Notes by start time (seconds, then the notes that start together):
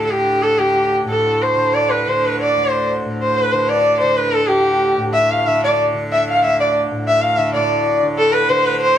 Already playing: D2 A2 D3
0.05 D3 A4
0.10 G4
0.42 A4
0.58 D2 G4
1.05 A2 A4
1.42 C5
1.56 D3
1.74 D5
1.90 B4
2.07 D3 C5
2.27 B4
2.41 D5
2.47 D5
2.56 D2
2.70 C5
3.05 A2
3.22 C5
3.31 C5
3.37 B4
3.45 B4
3.52 D3 C5
3.69 D5
3.78 D5
4.00 D3 C5
4.10 C5
4.17 B4
4.26 B4
4.32 A4
4.43 A4
4.48 D2 G4
4.59 G4
4.98 A2
5.14 E5
5.23 E5
5.31 F5
5.38 F5
5.47 D3 E5
5.64 D5
5.73 D5
5.94 D3
6.12 E5
6.20 E5
6.30 F5
6.37 F5
6.45 D2 E5
6.60 D5
6.68 D5
6.91 A2
7.08 E5
7.17 E5
7.22 F5
7.32 F5
7.37 D3 E5
7.53 A2 D5
7.63 D5
8.03 D3
8.18 A4
8.25 A4
8.32 B4
8.42 B4
8.49 D3 C5
8.57 C5
8.65 B4
8.81 C5
8.88 C5